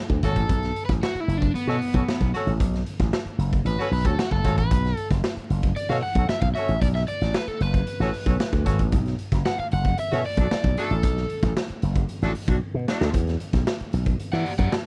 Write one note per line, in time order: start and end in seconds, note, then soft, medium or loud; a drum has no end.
0.09 0.20 D2 medium
0.09 kick medium
0.23 0.34 G#1 medium
0.23 0.40 C#4 medium
0.23 0.40 F#4 medium
0.23 0.40 A4 medium
0.23 0.85 A4 loud
0.23 0.40 C#5 loud
0.23 kick loud
0.23 snare soft
0.23 closed hi-hat medium
0.36 0.47 A1 medium
0.36 kick medium
0.36 closed hi-hat soft
0.49 0.71 B1 loud
0.49 kick loud
0.49 closed hi-hat loud
0.63 snare soft
0.63 closed hi-hat soft
0.76 closed hi-hat medium
0.85 1.00 A1 medium
0.85 0.90 B4 medium
0.85 kick loud
0.90 snare soft
0.90 closed hi-hat soft
1.03 1.20 F#4 loud
1.03 snare loud
1.15 muted slap bass stroke medium
1.15 closed hi-hat soft
1.20 1.38 E4 medium
1.28 1.49 F#1 medium
1.28 closed hi-hat medium
1.38 1.55 D4 medium
1.42 kick medium
1.42 closed hi-hat soft
1.54 2.30 B3 medium
1.54 muted slap bass stroke soft
1.54 closed hi-hat medium
1.67 1.78 B2 medium
1.67 1.76 C#4 loud
1.67 1.76 F#4 loud
1.67 1.76 A4 loud
1.67 1.76 C#5 loud
1.67 snare soft
1.82 open hi-hat medium
1.94 2.05 B1 loud
1.94 2.03 C#4 medium
1.94 2.03 F#4 medium
1.94 2.02 A4 medium
1.94 2.03 C#5 medium
1.94 kick medium
1.94 closed hi-hat soft
2.07 muted slap bass stroke soft
2.07 snare loud
2.21 2.31 B1 medium
2.21 kick medium
2.21 closed hi-hat soft
2.34 2.51 C#4 loud
2.34 2.51 F#4 loud
2.34 2.51 A4 loud
2.34 2.51 C#5 loud
2.34 snare soft
2.34 closed hi-hat medium
2.47 2.60 A1 medium
2.47 closed hi-hat soft
2.60 2.81 B1 loud
2.60 kick loud
2.60 closed hi-hat loud
2.74 snare soft
2.74 closed hi-hat soft
2.86 closed hi-hat medium
3.00 3.10 A1 medium
3.00 kick loud
3.00 snare soft
3.00 closed hi-hat soft
3.13 snare loud
3.25 muted slap bass stroke soft
3.25 closed hi-hat soft
3.38 3.60 F#1 medium
3.38 closed hi-hat medium
3.53 kick loud
3.53 closed hi-hat soft
3.65 3.76 A1 loud
3.65 3.92 B4 loud
3.65 closed hi-hat medium
3.79 3.87 C#4 loud
3.79 3.87 F#4 loud
3.79 3.87 A4 loud
3.79 3.87 C#5 loud
3.79 snare soft
3.91 4.02 B1 medium
3.91 4.06 B4 medium
3.91 open hi-hat medium
4.04 4.16 D2 medium
4.04 4.13 C#4 medium
4.04 4.14 F#4 medium
4.04 4.13 A4 medium
4.04 4.19 A4 medium
4.04 4.13 C#5 medium
4.04 kick loud
4.04 closed hi-hat soft
4.19 4.32 F#4 medium
4.19 snare loud
4.31 4.42 F#1 medium
4.31 4.58 A4 medium
4.31 kick medium
4.44 4.58 G#1 medium
4.44 4.62 C#4 medium
4.44 4.61 F#4 medium
4.44 4.61 A4 medium
4.44 4.62 C#5 loud
4.44 kick loud
4.44 snare soft
4.44 closed hi-hat medium
4.58 4.69 A1 medium
4.58 5.07 B4 medium
4.58 kick medium
4.58 closed hi-hat soft
4.71 4.92 B1 loud
4.71 kick loud
4.71 closed hi-hat loud
4.85 snare soft
4.85 closed hi-hat soft
4.97 closed hi-hat medium
5.10 5.21 F#1 medium
5.10 kick loud
5.10 snare soft
5.10 closed hi-hat soft
5.24 snare loud
5.37 muted slap bass stroke soft
5.37 closed hi-hat soft
5.50 5.71 F#1 medium
5.50 closed hi-hat medium
5.63 kick medium
5.63 closed hi-hat soft
5.76 5.89 D5 medium
5.76 muted slap bass stroke soft
5.76 closed hi-hat medium
5.89 6.00 B2 medium
5.89 5.98 C#4 loud
5.89 5.98 F#4 loud
5.89 5.98 A4 loud
5.89 5.98 C#5 loud
5.89 5.94 F5 loud
5.89 snare soft
5.89 closed hi-hat soft
6.02 6.29 F#5 medium
6.02 open hi-hat medium
6.15 6.26 B1 medium
6.15 6.25 C#4 medium
6.15 6.25 F#4 medium
6.15 6.25 A4 medium
6.15 6.25 C#5 medium
6.15 kick loud
6.15 closed hi-hat soft
6.29 6.41 E5 loud
6.29 muted slap bass stroke soft
6.29 snare medium
6.41 6.53 B1 medium
6.41 6.47 F5 loud
6.41 kick medium
6.41 closed hi-hat soft
6.55 6.72 C#4 loud
6.55 6.72 F#4 medium
6.55 6.72 A4 medium
6.55 6.72 C#5 loud
6.55 6.81 E5 loud
6.55 snare soft
6.55 closed hi-hat medium
6.68 6.79 A1 medium
6.68 closed hi-hat soft
6.81 7.03 B1 loud
6.81 6.87 D5 medium
6.81 kick loud
6.81 closed hi-hat medium
6.95 7.00 E5 loud
6.95 snare soft
6.95 closed hi-hat soft
7.07 7.35 D5 loud
7.07 closed hi-hat medium
7.21 7.32 A1 medium
7.21 snare soft
7.21 closed hi-hat soft
7.34 7.48 B4 medium
7.34 snare loud
7.47 7.61 A4 medium
7.47 muted slap bass stroke medium
7.47 closed hi-hat soft
7.60 7.82 F#1 medium
7.60 8.93 B4 medium
7.60 closed hi-hat medium
7.74 kick loud
7.74 closed hi-hat soft
7.87 closed hi-hat medium
8.00 8.11 A1 loud
8.00 8.09 C#4 loud
8.00 8.09 F#4 loud
8.00 8.09 A4 loud
8.00 8.09 C#5 loud
8.00 snare soft
8.00 closed hi-hat soft
8.14 open hi-hat medium
8.26 8.37 B1 medium
8.26 8.35 C#4 medium
8.26 8.34 F#4 medium
8.26 8.35 A4 medium
8.26 8.35 C#5 medium
8.26 kick medium
8.26 closed hi-hat soft
8.40 snare loud
8.53 8.63 D2 medium
8.53 kick medium
8.53 closed hi-hat soft
8.65 8.76 G#1 medium
8.65 8.82 C#4 medium
8.65 8.82 F#4 loud
8.65 8.82 A4 medium
8.65 8.82 C#5 loud
8.65 kick loud
8.65 snare soft
8.65 closed hi-hat medium
8.79 8.90 A1 medium
8.79 kick medium
8.79 closed hi-hat soft
8.92 9.13 B1 loud
8.92 kick loud
8.92 closed hi-hat medium
9.06 snare soft
9.06 closed hi-hat soft
9.19 closed hi-hat medium
9.32 9.43 F#1 medium
9.32 kick loud
9.32 snare soft
9.32 closed hi-hat medium
9.46 9.59 F#5 loud
9.46 snare loud
9.58 9.65 F5 medium
9.58 muted slap bass stroke soft
9.58 closed hi-hat soft
9.71 9.93 F#1 medium
9.71 9.99 F#5 loud
9.71 closed hi-hat medium
9.84 kick medium
9.84 closed hi-hat soft
9.98 10.25 E5 medium
9.98 muted slap bass stroke medium
9.98 closed hi-hat medium
10.11 10.22 B2 loud
10.11 10.20 C#4 loud
10.11 10.19 F#4 loud
10.11 10.20 A4 loud
10.11 10.20 C#5 loud
10.11 snare soft
10.11 closed hi-hat soft
10.24 10.79 D5 medium
10.24 open hi-hat medium
10.37 10.48 B1 medium
10.37 10.46 A3 medium
10.37 10.46 D4 medium
10.37 10.46 F#4 medium
10.37 10.46 A4 medium
10.37 kick loud
10.37 closed hi-hat soft
10.51 muted slap bass stroke soft
10.51 snare loud
10.64 10.74 B1 medium
10.64 kick loud
10.64 closed hi-hat soft
10.77 10.94 A3 loud
10.77 10.94 D4 loud
10.77 10.94 F#4 medium
10.77 10.94 A4 loud
10.77 11.52 A4 medium
10.77 snare soft
10.77 closed hi-hat medium
10.90 11.03 A1 medium
10.90 closed hi-hat soft
11.03 11.24 B1 loud
11.03 kick loud
11.03 closed hi-hat loud
11.17 snare soft
11.30 closed hi-hat medium
11.43 11.53 A1 medium
11.43 kick loud
11.43 snare soft
11.43 closed hi-hat medium
11.57 snare loud
11.69 muted slap bass stroke soft
11.69 closed hi-hat soft
11.82 12.04 F#1 loud
11.82 closed hi-hat medium
11.95 kick loud
11.95 closed hi-hat soft
12.09 closed hi-hat medium
12.22 12.33 A1 loud
12.22 12.30 A3 loud
12.22 12.30 D4 loud
12.22 12.30 F#4 loud
12.22 12.30 A4 loud
12.22 snare soft
12.22 closed hi-hat soft
12.35 open hi-hat medium
12.48 12.58 B1 medium
12.48 12.56 A3 medium
12.48 12.56 D4 medium
12.48 12.57 F#4 medium
12.48 12.56 A4 medium
12.48 kick loud
12.48 closed hi-hat soft
12.74 12.85 B2 loud
12.87 13.10 A3 loud
12.87 13.10 D4 loud
12.87 13.10 F#4 medium
12.87 13.10 A4 loud
12.87 snare loud
13.01 13.11 D2 medium
13.01 snare medium
13.14 13.35 E2 loud
13.14 kick loud
13.14 closed hi-hat medium
13.27 snare soft
13.27 closed hi-hat soft
13.40 closed hi-hat medium
13.53 13.64 B1 medium
13.53 kick loud
13.53 snare soft
13.53 closed hi-hat medium
13.67 snare loud
13.80 muted slap bass stroke medium
13.80 closed hi-hat soft
13.93 14.14 B1 medium
13.93 closed hi-hat medium
14.06 kick loud
14.06 closed hi-hat soft
14.20 muted slap bass stroke medium
14.20 closed hi-hat medium
14.32 14.43 E3 loud
14.32 14.52 G4 medium
14.32 14.51 D5 medium
14.32 14.51 F#5 medium
14.32 snare soft
14.32 closed hi-hat soft
14.46 open hi-hat medium
14.58 14.69 F#2 loud
14.58 14.74 G4 medium
14.58 14.73 D5 medium
14.58 14.73 F#5 medium
14.58 kick medium
14.58 closed hi-hat soft
14.72 muted slap bass stroke soft
14.72 snare loud